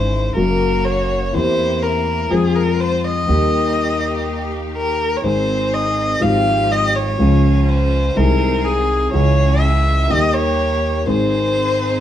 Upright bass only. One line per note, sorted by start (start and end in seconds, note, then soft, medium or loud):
0.00 0.31 G#1 medium
0.37 1.29 F#1 medium
1.35 2.27 E2 medium
2.31 3.24 F2 medium
3.28 5.15 D#2 medium
5.24 6.17 G#1 medium
6.22 7.14 G#1 medium
7.19 8.12 C#2 medium
8.17 9.09 C2 medium
9.14 10.06 C#2 medium
10.11 11.03 D#2 medium
11.07 12.00 G#1 medium